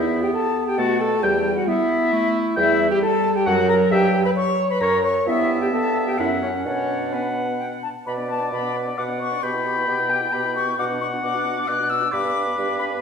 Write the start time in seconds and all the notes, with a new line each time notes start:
Already playing: E2 B3 E4 E5
0.23 G4 G5
0.33 A4 A5
0.67 G4 G5
0.78 B2 A3 F#4 F#5 A5
1.01 A4 A5
1.22 E2 G3 G4 G5
1.56 F#4 F#5
1.67 B3 E4 E5
2.12 A3
2.56 E2 G3 E4 E5 G5
2.91 G4 G5
3.02 A4 A5
3.35 G4 G5
3.46 F#2 F#3 F#4 F#5
3.69 A#4 A#5
3.91 G2 G4 E5 G5
4.25 B4 B5
4.36 C#5 C#6
4.70 B4 B5
4.81 F#2 A#4 C#5 A#5
5.04 C#5 C#6
5.27 G2 B3 E4 E5
5.61 G4 G5
5.72 B3 A4 A5
6.07 G4 G5
6.18 F#2 C#4 E4 E5 F#5
6.42 C#4 C#5
6.65 B2 C#4 D4 C#5 F#5
7.12 B3 B4 F#5
7.60 G5
7.83 A5
8.06 B2 B3 B4 D5 B5
8.18 D4 D5
8.29 B3 B4 A5
8.41 D4 D5
8.52 B2 B3 B4 B5
8.63 D4 D5
8.75 B3 B4
8.86 D4 D5
8.97 B2 B3 B4 F#5 D6
9.09 D4 D5
9.20 B3 B4 C#6
9.32 D4 D5
9.42 B2 B3 G4 G5 B5
9.54 E4 B4
9.65 B3 G4
9.76 E4 B4
9.87 B2 B3 G4
9.98 E4 B4
10.09 B3 G4 G5
10.21 E4 B4
10.32 B2 B3 G4 B5
10.44 E4 B4
10.56 B3 G4 C#6
10.67 E4 B4
10.78 B2 D4 F#4 F#5 D6
10.90 B3 D4
11.01 D4 F#4 C#6
11.13 B3 D4
11.23 B2 D4 F#4 D6
11.35 B3 D4
11.46 D4 F#4
11.57 B3 D4
11.68 B2 D4 F#4 D5 F#6
11.80 B3 D4
11.90 D4 F#4 E6
12.03 B3 D4
12.12 G2 D4 G4 B4 D6
12.25 B3 B4
12.36 D4 G4
12.47 B3 B4
12.57 G2 D4 G4
12.69 B3 B4
12.79 D4 G4 B5
12.91 B3 B4